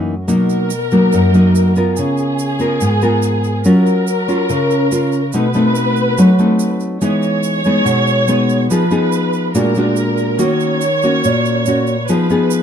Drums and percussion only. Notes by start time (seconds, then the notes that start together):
0.28 shaker
0.50 shaker
0.70 shaker
0.91 shaker
1.12 shaker
1.34 shaker
1.55 shaker
1.76 shaker
1.96 shaker
2.17 shaker
2.39 shaker
2.59 shaker
2.81 shaker
3.01 shaker
3.22 shaker
3.44 shaker
3.64 shaker
3.86 shaker
4.07 shaker
4.29 shaker
4.49 shaker
4.71 shaker
4.92 shaker
5.12 shaker
5.33 shaker
5.54 shaker
5.75 shaker
5.96 shaker
6.18 shaker
6.39 shaker
6.59 shaker
6.80 shaker
7.01 shaker
7.23 shaker
7.43 shaker
7.64 shaker
7.86 shaker
8.07 shaker
8.28 shaker
8.49 shaker
8.71 shaker
8.91 shaker
9.12 shaker
9.33 shaker
9.55 shaker
9.75 shaker
9.96 shaker
10.18 shaker
10.39 shaker
10.60 shaker
10.81 shaker
11.02 shaker
11.24 shaker
11.46 shaker
11.66 shaker
11.87 shaker
12.08 shaker
12.30 shaker
12.51 shaker